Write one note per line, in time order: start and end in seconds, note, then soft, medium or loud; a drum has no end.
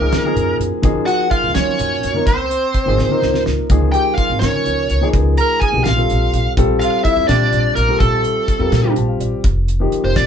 0.00 0.11 C#2 medium
0.00 0.22 F3 medium
0.00 0.56 A#3 medium
0.00 0.22 A#3 medium
0.00 0.23 D#4 medium
0.00 0.23 G#4 medium
0.00 0.56 A#4 medium
0.12 0.34 F#3 medium
0.12 snare loud
0.12 closed hi-hat medium
0.24 0.80 F3 medium
0.24 0.80 A#3 medium
0.24 0.80 D#4 medium
0.24 0.81 G#4 medium
0.36 0.58 F#2 medium
0.36 closed hi-hat medium
0.59 0.71 F#2 medium
0.59 closed hi-hat medium
0.82 1.06 F#2 medium
0.82 1.50 F3 medium
0.82 1.50 A#3 medium
0.82 1.50 D#4 medium
0.82 1.51 G#4 loud
0.82 kick loud
0.82 closed hi-hat medium
1.06 1.29 F#4 medium
1.06 1.29 F#5 loud
1.06 closed hi-hat medium
1.30 1.53 F4 medium
1.30 1.53 F5 medium
1.30 kick medium
1.30 closed hi-hat medium
1.44 1.55 C#2 medium
1.54 2.11 F3 medium
1.54 1.78 F#3 medium
1.54 2.11 A#3 medium
1.54 2.22 C#4 medium
1.54 2.11 D#4 medium
1.54 2.11 F4 medium
1.54 2.27 C#5 medium
1.54 snare loud
1.54 closed hi-hat medium
1.79 2.01 F#2 medium
1.79 closed hi-hat medium
2.03 2.27 F#2 medium
2.03 closed hi-hat medium
2.14 2.26 F3 medium
2.14 2.27 A#3 medium
2.14 2.27 D#4 medium
2.14 2.27 A#4 medium
2.27 2.49 C#2 medium
2.27 3.42 C4 medium
2.27 3.42 C5 medium
2.27 kick loud
2.27 closed hi-hat medium
2.51 closed hi-hat medium
2.74 kick medium
2.74 closed hi-hat medium
2.86 2.98 G#1 medium
2.86 3.08 F3 medium
2.86 3.08 A#3 medium
2.86 3.09 D#4 medium
2.86 3.09 G#4 medium
2.98 3.21 C#3 medium
2.98 snare medium
3.09 3.66 F3 medium
3.09 3.66 A#3 medium
3.09 3.66 D#4 medium
3.09 3.67 A#4 medium
3.22 3.45 C#2 medium
3.22 snare medium
3.34 snare medium
3.46 3.58 C#2 medium
3.46 snare medium
3.70 3.92 C#2 medium
3.70 4.37 F3 medium
3.70 4.37 A#3 medium
3.70 4.37 D#4 medium
3.70 4.38 G#4 loud
3.70 kick loud
3.70 closed hi-hat medium
3.92 4.17 G4 medium
3.92 4.14 G5 medium
3.92 closed hi-hat medium
4.15 4.40 F4 medium
4.15 4.38 F5 medium
4.15 kick medium
4.15 closed hi-hat medium
4.30 4.41 G#1 medium
4.39 4.64 C#3 medium
4.39 4.97 F3 medium
4.39 4.97 A#3 medium
4.39 5.09 C#4 medium
4.39 4.98 D#4 medium
4.39 4.98 A#4 medium
4.39 5.08 C#5 medium
4.39 snare loud
4.39 closed hi-hat medium
4.66 4.88 C#2 medium
4.66 closed hi-hat medium
4.90 5.01 C#2 medium
4.90 closed hi-hat medium
5.01 5.68 F3 medium
5.01 5.69 A#3 medium
5.01 5.69 D#4 medium
5.01 5.69 G#4 medium
5.14 5.36 C#2 medium
5.14 kick loud
5.14 closed hi-hat medium
5.37 5.62 A#4 medium
5.37 5.60 A#5 medium
5.37 closed hi-hat medium
5.60 5.84 G#4 medium
5.60 5.83 G#5 medium
5.60 kick medium
5.60 closed hi-hat medium
5.72 5.85 B1 medium
5.72 5.85 F3 medium
5.72 5.85 A#3 medium
5.72 5.85 D#4 medium
5.72 5.86 G4 medium
5.84 6.08 A#1 medium
5.84 6.54 F4 medium
5.84 6.52 F5 medium
5.84 snare loud
5.84 closed hi-hat medium
5.97 6.53 G3 medium
5.97 6.53 C4 medium
5.97 6.53 F4 medium
5.97 6.54 A4 medium
6.10 6.32 A#1 medium
6.10 closed hi-hat medium
6.33 6.44 A#1 medium
6.33 closed hi-hat medium
6.57 6.79 A#1 medium
6.57 7.24 G3 loud
6.57 7.24 C4 medium
6.57 7.24 F4 medium
6.57 7.25 A4 loud
6.57 kick loud
6.57 closed hi-hat medium
6.80 7.04 F4 medium
6.80 7.04 F5 medium
6.80 closed hi-hat medium
7.04 7.27 E4 medium
7.04 7.27 E5 medium
7.04 kick medium
7.04 closed hi-hat medium
7.17 7.28 F2 medium
7.28 7.51 A#2 medium
7.28 7.84 G3 medium
7.28 7.85 C4 medium
7.28 7.73 D4 medium
7.28 7.85 F4 medium
7.28 7.85 G4 medium
7.28 7.73 D5 medium
7.28 snare loud
7.28 closed hi-hat medium
7.52 7.74 A#1 medium
7.52 closed hi-hat medium
7.75 7.87 A#1 medium
7.75 7.99 A#3 medium
7.75 7.98 A#4 medium
7.75 closed hi-hat medium
7.88 8.55 G3 medium
7.88 8.56 C4 medium
7.88 8.56 F4 medium
7.88 8.56 A4 medium
8.00 8.23 A#1 medium
8.00 8.93 A3 medium
8.00 8.92 A4 medium
8.00 kick loud
8.00 closed hi-hat medium
8.24 closed hi-hat medium
8.48 kick medium
8.48 closed hi-hat medium
8.59 8.71 F2 medium
8.59 8.82 G3 medium
8.59 8.82 C4 medium
8.59 8.83 F4 medium
8.59 8.83 A#4 medium
8.72 8.94 A#2 medium
8.72 snare loud
8.72 closed hi-hat medium
8.84 9.40 G3 medium
8.84 9.40 C4 medium
8.84 9.40 F4 medium
8.84 9.40 G4 medium
8.96 9.18 A#1 medium
8.96 9.08 A5 medium
8.96 closed hi-hat medium
9.08 9.19 F5 medium
9.20 9.31 A#1 medium
9.20 9.43 D5 medium
9.20 closed hi-hat medium
9.44 9.89 F1 loud
9.44 kick loud
9.44 closed hi-hat medium
9.68 closed hi-hat medium
9.80 10.25 F3 medium
9.80 10.25 A#3 medium
9.80 10.25 D#4 medium
9.80 10.26 G4 medium
9.92 muted upright bass stroke soft
9.92 closed hi-hat medium
10.04 10.15 F1 medium
10.04 10.16 C5 medium
10.16 10.27 A#1 medium
10.16 10.27 D5 medium
10.16 kick medium
10.16 snare loud
10.16 closed hi-hat medium